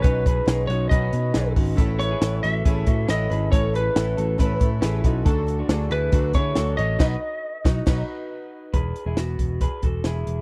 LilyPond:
<<
  \new Staff \with { instrumentName = "Lead electric guitar" } { \time 4/4 \key b \mixolydian \tempo 4 = 138 b'4. cis''8 dis''4. r8 | r8 cis''4 e''4. dis''4 | cis''8 b'2. r8 | r4. b'4 cis''4 dis''8~ |
dis''2. r4 | r1 | }
  \new Staff \with { instrumentName = "Clean electric guitar" } { \time 4/4 \key b \mixolydian <fis' cis''>8 <gis' b'>8 <dis' gis'>8 <dis' fis'>8 <fis' b'>4 <dis' gis'>8 <dis' fis'>8 | <e' a'>8. <e' gis'>16 <e' a'>8 <fis' a'>8 <e' gis'>8 <fis' a'>8 <e' a'>8 <gis' b'>8 | <a' cis''>8 <gis' b'>8 <e' a'>8 <fis' a'>8 <e' b'>4 <e' gis'>8 <dis' fis'>8 | <fis' a'>8. <d' fis'>16 <d' gis'>8 <e' gis'>8 <d' fis'>8 <e' gis'>8 <fis' a'>8 <a' cis''>8 |
<b' dis''>8 r2. r8 | <gis' b'>8. <e' gis'>16 <b fis'>4 <gis' b'>8 <fis' a'>8 <e' gis'>4 | }
  \new Staff \with { instrumentName = "Synth keys" } { \time 4/4 \key b \mixolydian <cis' dis' b'>4 <cis' dis' cis''>4 <cis' dis' b'>4 <cis' dis' b'>4 | <cis' a' b'>4 <cis' a' b'>4 <cis' a' b'>4 <cis' a' b'>4 | <cis' a' cis''>4 <cis' a' b'>4 <cis' a' b'>4 <cis' a' b'>4 | <d' fis' a'>4 <d' fis' a'>4 <d' fis' a'>4 <d' fis' a'>4 |
<dis' fis' b'>8 r4 <dis' fis'>8 <dis' fis' b'>8 r4. | r1 | }
  \new Staff \with { instrumentName = "Twelve-string acoustic guitar" } { \time 4/4 \key b \mixolydian <b, dis b cis' fis'>8 <b cis' fis'>8 <dis b cis' fis'>8 <b cis' fis'>8 <b, dis b cis' fis'>8 <b cis' fis'>8 <dis b cis' fis'>8 <b cis' fis'>8 | <a b e' a' cis''>8 <e' a' cis''>8 <b e' a' cis''>8 <e' a' cis''>8 <a b e' a' cis''>8 <e' a' cis''>8 <b e' a' cis''>8 <e' a' cis''>8 | <a b e' a' cis''>8 <e' a' cis''>8 <b e' a' cis''>8 <e' a' cis''>8 <a b e' a' cis''>8 <e' a' cis''>8 <b e' a' cis''>8 <e' a' cis''>8 | <d fis a d' fis'>8 <a d' fis'>8 <fis a d' fis'>8 <a d' fis'>8 <d fis a d' fis'>8 <a d' fis'>8 <fis a d' fis'>8 <a d' fis'>8 |
<b, fis b dis' fis'>8 r4 <b dis' fis'>8 <b, fis b dis' fis'>8 r4. | r1 | }
  \new Staff \with { instrumentName = "Picked electric bass" } { \clef bass \time 4/4 \key b \mixolydian b,,4 b,,8 b,,8 b,,8 b,8 b,,8 gis,,8 | a,,4 a,,8 a,,8 a,,8 a,8 a,,8 gis,,8 | a,,4 a,,8 a,,8 a,,8 a,8 a,,8 b,,8 | d,4 d,8 d,8 d,8 d8 d,8 a,,8 |
b,,8 r4 b,,8 b,,8 r4. | e,,8 r16 e,,16 e,,8 e,,8. r16 e,,8 e,,8 e,,8 | }
  \new DrumStaff \with { instrumentName = "Drums" } \drummode { \time 4/4 <hh bd>8 <hh bd>8 <hh sn>8 hh8 <hh bd>8 hh8 <hh sn>8 <hho bd>8 | <hh bd>8 hh8 <hh sn>8 hh8 <hh bd>8 <hh bd>8 <hh sn>8 hh8 | <hh bd>8 hh8 <hh sn>8 hh8 <hh bd>8 <hh bd>8 <hh sn>8 <hh bd>8 | <hh bd>8 hh8 <hh sn>8 hh8 <hh bd>8 <hh bd>8 <hh sn>8 hh8 |
<cymc bd sn>4 r8 <bd sn>8 <cymc bd sn>4 r4 | <hh bd>8 hh8 <hh sn>8 <hh bd>8 <hh bd>8 <hh bd>8 <hh sn>8 hh8 | }
>>